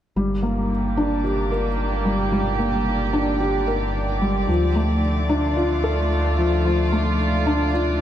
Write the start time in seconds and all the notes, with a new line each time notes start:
0.16 G1 D3 G3
0.24 A#3
0.43 A#3
0.58 G4
0.97 D4
1.03 D5
1.24 G4
1.52 A#4
2.05 G3
2.32 G3
2.59 A#3
3.13 D4
3.40 G4
3.67 A#4
4.22 G3
4.49 D2 F3
4.75 A3
4.89 A3
5.29 D4 F4
5.57 F4
5.84 A4
6.38 F3
6.65 F3
6.92 A3
7.46 D4
7.74 F4